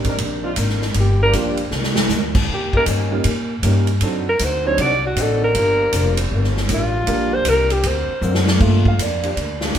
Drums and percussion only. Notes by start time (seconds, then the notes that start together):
0.04 kick, ride
0.18 kick, ride
0.56 kick, hi-hat pedal, ride
0.69 snare
0.82 snare
0.94 kick, ride
1.33 kick, hi-hat pedal, ride
1.57 ride
1.71 snare
1.83 snare
1.96 snare
2.09 snare, hi-hat pedal
2.35 kick, crash
2.49 kick
2.73 kick
2.86 kick, hi-hat pedal, ride
3.24 kick, ride
3.63 kick, hi-hat pedal, ride
3.87 ride
4.01 kick, ride
4.39 kick, hi-hat pedal, ride
4.78 kick, ride
5.16 kick, hi-hat pedal, ride
5.55 kick, ride
5.92 kick, hi-hat pedal, ride
6.17 ride
6.31 kick
6.44 snare
6.57 snare
6.69 kick, hi-hat pedal, ride
7.07 kick, ride
7.45 kick, hi-hat pedal, ride
7.70 ride
7.83 kick, ride
8.22 hi-hat pedal
8.35 snare
8.47 snare
8.60 kick, crash
8.85 kick
8.99 kick, hi-hat pedal, ride
9.23 ride
9.37 kick, ride
9.61 snare
9.75 kick, hi-hat pedal, ride